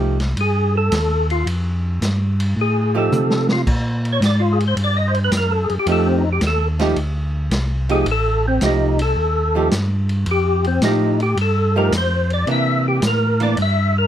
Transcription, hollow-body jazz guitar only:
0.00 0.16 F3 soft
0.00 0.17 A3 medium
0.00 0.17 D#4 medium
0.00 0.17 G4 medium
2.95 3.63 F3 medium
2.95 3.64 A3 medium
2.95 3.64 D#4 medium
2.95 3.64 G4 medium
5.87 6.21 F3 medium
5.87 6.22 A3 medium
5.87 6.22 D#4 medium
5.87 6.22 G4 medium
6.79 6.95 F3 medium
6.79 6.95 A3 medium
6.79 6.95 D#4 medium
6.79 6.96 G4 medium
7.89 8.05 F3 medium
7.89 8.05 A3 medium
7.89 8.06 D#4 medium
7.89 8.05 G4 medium
8.62 8.96 F3 medium
8.62 8.97 A3 soft
8.62 8.97 D#4 medium
8.62 8.97 G4 medium
9.55 9.70 F3 medium
9.55 9.71 A3 soft
9.55 9.71 D#4 soft
9.55 9.71 G4 medium
10.83 11.17 F3 medium
10.83 11.17 A3 medium
10.83 11.17 D#4 medium
10.83 11.17 G4 medium
11.76 11.91 F3 medium
11.76 11.91 A3 medium
11.76 11.91 D#4 medium
11.76 11.92 G4 medium
12.48 13.33 E3 medium
12.48 13.33 A#3 medium
12.48 13.34 D4 medium
13.40 13.56 E3 medium
13.40 13.56 A#3 medium
13.40 13.56 D4 medium

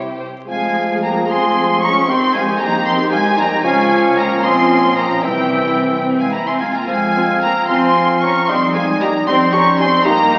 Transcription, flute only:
0.48 0.99 F5 medium
1.04 1.29 G5 medium
1.30 1.82 G#5 medium
1.83 1.89 A#5 medium
2.09 2.15 G5 medium
2.35 2.41 F5 medium
2.61 2.67 G5 medium
2.87 3.11 G5 medium
3.12 3.18 F5 medium
3.38 3.64 G5 medium
3.65 4.18 F5 medium
4.17 4.43 G5 loud
4.43 4.96 G#5 medium
4.97 5.25 G5 medium
5.24 6.05 E5 medium
6.18 6.33 F5 medium
6.32 6.48 G5 medium
6.47 6.62 G#5 medium
6.61 6.76 F5 medium
6.75 6.88 G5 medium
6.89 7.41 F5 medium
7.43 7.68 G5 medium
7.70 8.21 G#5 medium
8.24 8.49 A#5 medium
8.51 8.57 G5 medium
8.77 8.83 F5 medium
9.02 9.08 G5 medium
9.28 9.56 G5 medium
9.54 9.79 A#5 medium
9.79 9.85 G#5 medium
10.06 10.39 G5 loud

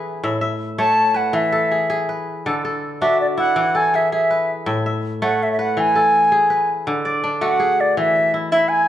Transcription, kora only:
0.00 0.29 E3 medium
0.00 0.25 D4 medium
0.00 0.51 E4 medium
0.00 0.29 G#4 medium
0.00 0.63 A4 medium
0.00 1.10 B4 medium
0.23 1.40 A2 medium
0.23 0.41 E5 medium
0.41 1.45 E5 medium
0.78 1.77 A3 medium
0.78 1.93 C#5 medium
1.14 2.09 B4 medium
1.33 2.50 E3 medium
1.52 2.46 A4 medium
1.71 1.89 G#4 medium
1.90 2.52 G#4 medium
2.09 3.32 B4 medium
2.46 3.61 D3 medium
2.46 2.64 A4 medium
2.65 3.74 A4 medium
3.02 4.70 D4 medium
3.02 4.48 F#4 medium
3.37 4.94 E4 medium
3.56 4.72 E3 medium
3.75 5.07 A4 medium
3.94 4.12 G#4 medium
4.12 4.72 G#4 medium
4.31 5.54 B4 medium
4.66 5.82 A2 medium
4.66 4.86 E5 medium
4.86 5.89 E5 medium
5.22 6.38 A3 medium
5.22 6.37 C#5 medium
5.59 6.50 B4 medium
5.77 6.92 E3 medium
5.96 7.27 A4 medium
6.32 7.47 G#4 medium
6.50 7.73 B4 medium
6.87 8.02 D3 medium
7.05 8.16 D5 medium
7.24 8.88 D4 medium
7.41 8.88 A3 medium
7.41 8.88 F#4 medium
7.60 8.88 G#4 medium
7.97 8.88 E3 medium
8.34 8.52 E4 medium
8.52 8.88 E4 medium

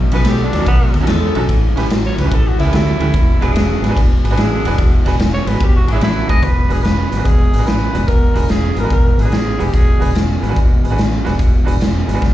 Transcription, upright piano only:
0.12 0.19 C#4 medium
0.12 0.20 D#4 medium
0.12 0.20 F#4 medium
0.12 0.20 B4 medium
0.53 0.56 F#4 soft
0.53 0.58 A4 medium
0.58 0.66 C#4 medium
0.58 0.66 D#4 medium
0.58 0.67 F#4 medium
0.58 0.67 A4 medium
0.93 0.97 F#4 soft
0.93 0.98 A4 medium
1.01 1.08 C#4 medium
1.01 1.08 D#4 medium
1.01 1.09 F#4 medium
1.01 1.09 A4 medium
1.35 1.42 C#4 medium
1.35 1.43 D#4 medium
1.35 1.43 F#4 medium
1.35 1.43 A4 loud
1.76 1.83 C#4 medium
1.76 1.84 E4 medium
1.76 1.84 G4 medium
1.76 1.84 B4 loud
2.17 2.21 G4 soft
2.17 2.22 B4 medium
2.24 2.31 C#4 medium
2.24 2.32 E4 medium
2.24 2.32 G4 medium
2.24 2.32 B4 medium
2.58 2.62 G4 soft
2.58 2.63 B4 medium
2.64 2.72 C#4 medium
2.64 2.72 E4 medium
2.64 2.73 G4 medium
2.64 2.73 B4 medium
3.00 3.07 C#4 medium
3.00 3.07 E4 medium
3.00 3.08 G4 medium
3.00 3.08 B4 medium
3.41 3.48 D4 loud
3.41 3.49 F#4 medium
3.41 3.49 G#4 medium
3.41 3.49 B4 loud
3.82 3.86 G#4 medium
3.82 3.87 B4 medium
3.89 3.96 D4 medium
3.89 3.96 F#4 medium
3.89 3.97 G#4 medium
3.89 3.97 B4 loud
4.23 4.27 G#4 medium
4.23 4.28 B4 medium
4.30 4.37 D4 medium
4.30 4.38 F#4 medium
4.30 4.38 G#4 medium
4.30 4.38 B4 medium
4.66 4.72 D4 loud
4.66 4.72 F#4 medium
4.66 4.73 G#4 medium
4.66 4.73 B4 loud
5.05 5.13 D4 medium
5.05 5.13 F#4 medium
5.05 5.13 G#4 medium
5.05 5.14 B4 loud
5.46 5.50 G#4 soft
5.46 5.51 B4 medium
5.52 5.60 D4 medium
5.52 5.61 F#4 medium
5.52 5.61 G#4 medium
5.52 5.61 B4 medium
5.87 5.91 G#4 soft
5.87 5.92 B4 soft
5.94 6.02 D4 medium
5.94 6.02 F#4 medium
5.94 6.02 G#4 medium
5.94 6.02 C#5 medium
6.27 6.35 D4 medium
6.27 6.36 F#4 medium
6.27 6.36 G#4 medium
6.27 6.37 B4 medium
6.68 6.77 D4 medium
6.68 6.77 F#4 medium
6.68 6.77 G#4 medium
6.68 6.78 B4 medium
7.10 7.15 G#4 soft
7.10 7.16 B4 soft
7.17 7.25 D4 medium
7.17 7.25 F#4 medium
7.17 7.26 G#4 medium
7.17 7.26 B4 medium
7.51 7.56 G#4 soft
7.51 7.57 B4 soft
7.58 7.66 D4 medium
7.58 7.67 F#4 medium
7.58 7.67 G#4 medium
7.58 7.67 B4 medium
7.93 8.01 D4 medium
7.93 8.01 F#4 medium
7.93 8.01 G#4 medium
7.93 8.02 B4 medium
8.34 8.42 D4 medium
8.34 8.42 F#4 medium
8.34 8.42 G#4 medium
8.34 8.43 B4 medium
8.77 8.80 G#4 soft
8.77 8.81 B4 soft
8.83 8.90 D4 medium
8.83 8.91 F#4 medium
8.83 8.91 G#4 medium
8.83 8.91 B4 medium
9.18 9.22 G#4 soft
9.18 9.23 B4 soft
9.24 9.32 D4 medium
9.24 9.32 F#4 medium
9.24 9.33 G#4 medium
9.24 9.33 B4 medium
9.59 9.66 D4 medium
9.59 9.67 F#4 medium
9.59 9.67 G#4 medium
9.59 9.67 B4 medium
9.99 10.07 D4 medium
9.99 10.07 F#4 medium
9.99 10.08 G#4 medium
9.99 10.08 B4 medium
10.41 10.45 G#4 soft
10.41 10.46 B4 medium
10.49 10.56 D4 medium
10.49 10.56 F#4 medium
10.49 10.57 G#4 medium
10.49 10.57 B4 medium
10.83 10.87 G#4 medium
10.83 10.88 B4 medium
10.90 10.97 D4 medium
10.90 10.98 F#4 medium
10.90 10.98 G#4 medium
10.90 10.98 B4 medium
11.24 11.32 D4 medium
11.24 11.32 F#4 medium
11.24 11.32 G#4 medium
11.24 11.33 B4 medium
11.65 11.72 D4 medium
11.65 11.73 F#4 medium
11.65 11.73 G#4 medium
11.65 11.73 B4 medium
12.06 12.10 G#4 medium
12.06 12.12 B4 medium
12.13 12.21 D4 medium
12.13 12.21 F#4 medium
12.13 12.21 G#4 medium
12.13 12.22 B4 medium

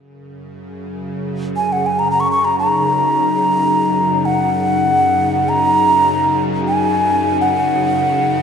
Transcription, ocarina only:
1.56 1.74 G#5 medium
1.72 1.88 F#5 medium
1.86 2.01 G#5 medium
1.99 2.10 A#5 medium
2.11 2.22 A#5 medium
2.20 2.31 C#6 medium
2.31 2.46 C#6 medium
2.45 2.58 A#5 medium
2.59 4.27 A#5 medium
4.25 5.50 F#5 medium
5.49 6.42 A#5 medium
6.68 7.38 G#5 medium
7.41 8.42 F#5 medium

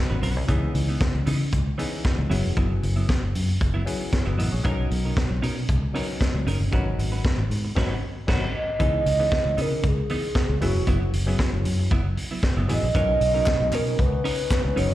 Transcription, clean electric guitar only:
0.10 0.20 C#4 medium
0.10 0.21 F#4 medium
0.10 0.21 B4 medium
0.22 0.42 C#4 medium
0.22 0.35 F#4 medium
0.22 0.34 B4 medium
0.35 muted clean electric guitar stroke soft
0.48 0.72 E3 medium
0.48 0.73 B3 medium
0.48 0.73 D#4 medium
0.74 muted clean electric guitar stroke soft
0.88 1.00 E3 soft
0.88 1.00 B3 soft
0.88 0.99 D#4 medium
1.14 muted clean electric guitar stroke medium
1.26 1.42 E3 medium
1.26 1.40 B3 medium
1.26 1.39 D#4 medium
1.40 muted clean electric guitar stroke medium
1.66 muted clean electric guitar stroke soft
1.78 1.94 E3 medium
1.78 1.92 B3 medium
1.78 1.91 D#4 medium
1.92 muted clean electric guitar stroke soft
2.18 muted clean electric guitar stroke soft
2.30 2.46 F#3 medium
2.30 2.44 B3 medium
2.30 2.43 E4 medium
2.44 muted clean electric guitar stroke soft
2.57 2.72 F#3 medium
2.57 2.70 B3 medium
2.57 2.69 E4 medium
2.70 muted clean electric guitar stroke soft
2.83 muted clean electric guitar stroke soft
2.96 3.07 F#3 soft
2.96 3.07 B3 medium
2.96 3.07 E4 medium
3.08 muted clean electric guitar stroke soft
3.22 muted clean electric guitar stroke medium
3.48 muted clean electric guitar stroke soft
3.61 muted clean electric guitar stroke soft
3.74 3.85 F#3 medium
3.74 3.86 B3 medium
3.74 3.86 E4 medium
3.86 muted clean electric guitar stroke soft
4.00 muted clean electric guitar stroke soft
4.13 muted clean electric guitar stroke soft
4.26 4.36 F#3 medium
4.26 4.38 B3 medium
4.26 4.37 E4 medium
4.38 4.54 F#3 medium
4.38 4.52 B3 medium
4.38 4.51 E4 medium
4.52 muted clean electric guitar stroke soft
4.64 4.88 C#4 medium
4.64 4.89 D#4 medium
4.64 4.89 A#4 loud
4.92 muted clean electric guitar stroke soft
5.05 5.16 C#4 soft
5.05 5.16 D#4 medium
5.05 5.16 A#4 medium
5.30 muted clean electric guitar stroke medium
5.42 5.58 C#4 medium
5.42 5.57 D#4 medium
5.42 5.56 A#4 medium
5.57 muted clean electric guitar stroke soft
5.83 muted clean electric guitar stroke soft
5.95 6.10 C#4 medium
5.95 6.09 D#4 medium
5.95 6.08 A#4 loud
6.09 muted clean electric guitar stroke soft
6.35 muted clean electric guitar stroke soft
6.47 6.62 C#4 medium
6.47 6.61 D#4 medium
6.47 6.60 A#4 medium
6.61 muted clean electric guitar stroke soft
6.72 6.88 C#4 medium
6.72 6.86 F#4 medium
6.72 6.85 B4 medium
6.86 muted clean electric guitar stroke soft
6.99 muted clean electric guitar stroke soft
7.12 7.24 C#4 soft
7.12 7.23 F#4 medium
7.12 7.23 B4 medium
7.25 muted clean electric guitar stroke soft
7.38 muted clean electric guitar stroke medium
7.65 muted clean electric guitar stroke medium
7.77 7.94 C#4 medium
7.77 7.95 F#4 loud
7.77 7.95 B4 loud
8.29 8.47 C#4 medium
8.29 8.46 F#4 medium
8.29 8.46 B4 medium
8.80 9.04 E3 medium
8.80 9.04 B3 medium
8.80 9.04 D#4 medium
9.06 muted clean electric guitar stroke soft
9.19 9.31 E3 soft
9.19 9.31 B3 soft
9.19 9.30 D#4 medium
9.45 muted clean electric guitar stroke soft
9.57 9.73 E3 medium
9.57 9.71 B3 medium
9.57 9.70 D#4 medium
9.72 muted clean electric guitar stroke medium
9.97 muted clean electric guitar stroke soft
10.10 10.25 E3 medium
10.10 10.23 B3 medium
10.10 10.23 D#4 loud
10.24 muted clean electric guitar stroke soft
10.50 muted clean electric guitar stroke soft
10.62 10.77 F#3 medium
10.62 10.75 B3 medium
10.62 10.74 E4 medium
10.76 muted clean electric guitar stroke soft
10.87 11.03 F#3 medium
10.87 11.01 B3 loud
10.87 11.00 E4 loud
11.02 muted clean electric guitar stroke medium
11.14 muted clean electric guitar stroke soft
11.28 11.39 F#3 soft
11.28 11.39 B3 soft
11.28 11.38 E4 soft
11.54 muted clean electric guitar stroke medium
11.79 muted clean electric guitar stroke soft
11.91 12.07 F#3 medium
11.91 12.04 B3 medium
11.91 12.03 E4 loud
12.04 muted clean electric guitar stroke soft
12.17 muted clean electric guitar stroke soft
12.31 12.42 F#3 soft
12.31 12.42 B3 medium
12.31 12.42 E4 medium
12.57 12.68 F#3 medium
12.57 12.68 B3 medium
12.57 12.68 E4 medium
12.69 12.85 F#3 medium
12.69 12.83 B3 medium
12.69 12.82 E4 medium
12.84 muted clean electric guitar stroke soft
12.95 13.19 C#4 medium
12.95 13.19 D#4 medium
12.95 13.20 A#4 loud
13.21 muted clean electric guitar stroke soft
13.34 13.46 C#4 medium
13.34 13.46 D#4 medium
13.34 13.45 A#4 medium
13.61 muted clean electric guitar stroke soft
13.73 13.89 C#4 medium
13.73 13.86 D#4 medium
13.73 13.85 A#4 medium
13.87 muted clean electric guitar stroke soft
14.13 muted clean electric guitar stroke soft
14.24 14.40 C#4 medium
14.24 14.37 D#4 medium
14.24 14.37 A#4 loud
14.38 muted clean electric guitar stroke soft
14.64 muted clean electric guitar stroke medium
14.76 14.92 C#4 medium
14.76 14.90 D#4 medium
14.76 14.89 A#4 medium
14.90 muted clean electric guitar stroke medium

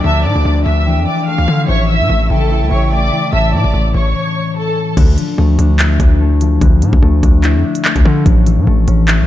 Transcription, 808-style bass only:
0.04 0.26 D2 loud
0.25 0.35 A2 loud
0.36 0.45 D2 loud
0.45 0.65 D2 loud
0.66 0.99 D2 loud
0.97 1.06 F2 loud
1.38 1.47 D2 loud
1.48 1.68 D3 loud
1.68 2.01 A1 loud
2.00 2.09 A2 loud
2.10 2.29 A1 loud
2.30 2.63 A1 loud
2.61 2.70 C#2 loud
2.71 3.11 A1 loud
3.33 3.55 A1 loud
3.53 3.64 A2 loud
3.64 3.73 A1 loud
3.74 3.94 A1 loud
3.94 4.14 A1 loud
4.97 5.17 D2 loud
5.38 5.58 D2 loud
5.59 5.98 D2 loud
6.00 6.59 D2 loud
6.62 6.84 D2 loud
6.82 6.92 A2 loud
6.93 7.02 D2 loud
7.03 7.22 D2 loud
7.23 7.56 D2 loud
7.55 7.64 F2 loud
7.96 8.05 D2 loud
8.05 8.25 D3 loud
8.26 8.59 A1 loud
8.57 8.67 A2 loud
8.67 8.87 A1 loud
8.88 9.21 A1 loud
9.19 9.27 C#2 loud

